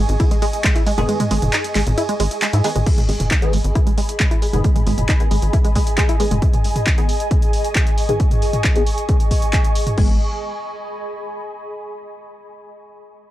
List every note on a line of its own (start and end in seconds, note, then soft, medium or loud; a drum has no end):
0.00 2.85 G#4 medium
0.00 2.87 D#5 medium
0.00 2.87 G#5 medium
0.00 2.87 C#6 medium
0.09 0.17 G#1 loud
0.09 closed hi-hat medium
0.20 0.25 E4 medium
0.20 kick loud
0.20 closed hi-hat medium
0.20 ride medium
0.31 0.36 G#3 medium
0.31 closed hi-hat medium
0.42 0.45 G#3 loud
0.42 open hi-hat loud
0.42 ride medium
0.53 closed hi-hat medium
0.64 0.69 G#3 medium
0.64 kick loud
0.64 clap loud
0.64 closed hi-hat medium
0.64 ride medium
0.76 0.83 E4 medium
0.76 closed hi-hat medium
0.86 0.91 G#3 medium
0.86 open hi-hat medium
0.86 ride medium
0.98 1.06 F#1 loud
0.98 1.62 D#3 medium
0.98 1.01 G#3 medium
0.98 1.62 B3 medium
0.98 1.62 G#4 medium
0.98 closed hi-hat medium
0.98 mid tom medium
1.09 1.14 G#3 medium
1.09 closed hi-hat medium
1.09 ride medium
1.20 1.25 G#3 medium
1.20 closed hi-hat medium
1.20 mid tom medium
1.31 1.39 G#1 loud
1.31 1.38 G#3 medium
1.31 open hi-hat loud
1.31 ride medium
1.42 1.50 F#1 medium
1.42 closed hi-hat medium
1.42 mid tom medium
1.53 1.56 D#4 medium
1.53 clap loud
1.53 closed hi-hat medium
1.53 ride medium
1.64 closed hi-hat medium
1.75 1.84 G#1 medium
1.75 1.80 G#3 medium
1.75 clap medium
1.75 open hi-hat medium
1.75 ride medium
1.87 1.95 G#1 loud
1.87 closed hi-hat medium
1.87 mid tom medium
1.98 2.03 E4 medium
1.98 closed hi-hat medium
1.98 ride medium
2.09 2.14 G#3 medium
2.09 closed hi-hat medium
2.20 2.28 G#1 loud
2.20 2.23 G#3 loud
2.20 open hi-hat loud
2.20 ride medium
2.31 closed hi-hat medium
2.42 2.47 G#3 medium
2.42 clap loud
2.42 closed hi-hat medium
2.42 ride medium
2.53 2.61 G#2 medium
2.53 2.60 E4 medium
2.53 closed hi-hat medium
2.64 2.70 D#3 medium
2.64 2.69 G#3 medium
2.64 2.70 B3 medium
2.64 2.70 G#4 loud
2.64 open hi-hat medium
2.64 ride medium
2.76 2.84 G#1 medium
2.76 2.78 G#3 medium
2.76 closed hi-hat medium
2.76 mid tom medium
2.86 2.91 G#3 medium
2.86 9.96 G#4 medium
2.86 kick loud
2.86 closed hi-hat medium
2.86 crash loud
2.98 3.03 G#3 medium
2.98 closed hi-hat medium
2.98 mid tom medium
3.02 7.10 B5 medium
3.06 3.17 G#1 loud
3.06 3.16 G#3 medium
3.06 9.98 D#5 medium
3.06 9.98 G#5 medium
3.06 open hi-hat loud
3.20 3.28 F#1 medium
3.20 closed hi-hat medium
3.20 mid tom medium
3.31 3.34 D#4 medium
3.31 kick loud
3.31 clap loud
3.31 closed hi-hat medium
3.42 3.52 D#3 medium
3.42 3.52 B3 medium
3.42 3.52 G#4 loud
3.42 closed hi-hat medium
3.53 3.62 G#1 medium
3.53 3.58 G#3 medium
3.53 open hi-hat medium
3.64 3.73 G#1 loud
3.64 closed hi-hat medium
3.75 3.80 E4 medium
3.75 kick loud
3.75 closed hi-hat medium
3.87 3.91 G#3 medium
3.87 closed hi-hat medium
3.98 4.01 G#3 loud
3.98 open hi-hat loud
4.09 closed hi-hat medium
4.20 4.25 G#3 medium
4.20 kick loud
4.20 clap loud
4.20 closed hi-hat medium
4.31 4.38 E4 medium
4.31 closed hi-hat medium
4.42 4.47 G#3 medium
4.42 open hi-hat medium
4.53 4.61 F#1 loud
4.53 5.17 D#3 medium
4.53 4.56 G#3 medium
4.53 5.17 B3 medium
4.53 5.17 G#4 medium
4.53 closed hi-hat medium
4.53 mid tom medium
4.64 4.69 G#3 medium
4.64 kick loud
4.64 closed hi-hat medium
4.76 4.80 G#3 medium
4.76 closed hi-hat medium
4.76 mid tom medium
4.87 4.95 G#1 loud
4.87 4.94 G#3 medium
4.87 open hi-hat loud
4.98 5.06 F#1 medium
4.98 closed hi-hat medium
4.98 mid tom medium
5.09 5.12 D#4 medium
5.09 kick loud
5.09 clap loud
5.09 closed hi-hat medium
5.20 5.26 D#3 loud
5.20 5.26 B3 medium
5.20 5.26 G#4 loud
5.20 closed hi-hat medium
5.31 5.39 G#1 medium
5.31 5.36 G#3 medium
5.31 open hi-hat loud
5.42 5.50 G#1 loud
5.42 closed hi-hat medium
5.53 5.58 E4 medium
5.53 kick loud
5.53 closed hi-hat medium
5.64 5.69 G#3 medium
5.64 closed hi-hat medium
5.75 5.78 G#3 loud
5.75 kick medium
5.75 open hi-hat loud
5.87 closed hi-hat medium
5.98 6.03 G#3 medium
5.98 kick loud
5.98 clap loud
5.98 closed hi-hat medium
6.09 6.16 E4 medium
6.09 closed hi-hat medium
6.20 6.26 D#3 medium
6.20 6.25 G#3 medium
6.20 6.26 B3 medium
6.20 6.26 G#4 loud
6.20 open hi-hat loud
6.31 6.39 F#1 loud
6.31 6.34 G#3 medium
6.31 closed hi-hat medium
6.31 mid tom medium
6.42 kick loud
6.42 closed hi-hat medium
6.53 closed hi-hat medium
6.53 mid tom medium
6.64 open hi-hat loud
6.76 closed hi-hat medium
6.76 mid tom medium
6.87 kick loud
6.87 clap loud
6.87 closed hi-hat medium
6.97 7.07 D#3 medium
6.97 7.07 B3 medium
6.97 7.07 G#4 loud
6.97 9.98 C#6 medium
6.97 closed hi-hat medium
7.09 open hi-hat loud
7.20 closed hi-hat medium
7.31 kick loud
7.31 closed hi-hat medium
7.42 closed hi-hat medium
7.53 open hi-hat loud
7.65 closed hi-hat medium
7.75 kick loud
7.75 clap loud
7.75 closed hi-hat medium
7.87 closed hi-hat medium
7.98 open hi-hat medium
8.09 8.73 D#3 medium
8.09 8.73 B3 medium
8.09 8.73 G#4 medium
8.09 closed hi-hat medium
8.09 mid tom medium
8.20 kick loud
8.20 closed hi-hat medium
8.31 closed hi-hat medium
8.31 mid tom medium
8.42 open hi-hat loud
8.53 closed hi-hat medium
8.53 mid tom loud
8.64 kick loud
8.64 clap loud
8.64 closed hi-hat medium
8.76 8.81 D#3 loud
8.76 8.81 B3 medium
8.76 8.81 G#4 loud
8.76 closed hi-hat medium
8.87 open hi-hat loud
8.98 closed hi-hat medium
9.09 kick loud
9.09 closed hi-hat medium
9.20 closed hi-hat medium
9.31 kick medium
9.31 open hi-hat loud
9.42 closed hi-hat medium
9.53 kick loud
9.53 clap loud
9.53 closed hi-hat medium
9.64 closed hi-hat medium
9.75 open hi-hat loud
9.87 closed hi-hat medium
9.87 mid tom medium
9.98 10.18 G#1 medium
9.98 10.14 D#3 medium
9.98 10.18 G#3 medium
9.98 10.14 B3 medium
9.98 11.71 G#4 medium
9.98 10.14 G#4 medium
9.98 kick loud
9.98 crash medium
10.05 11.72 D#5 medium
10.11 11.71 G#5 medium
10.18 11.71 B5 medium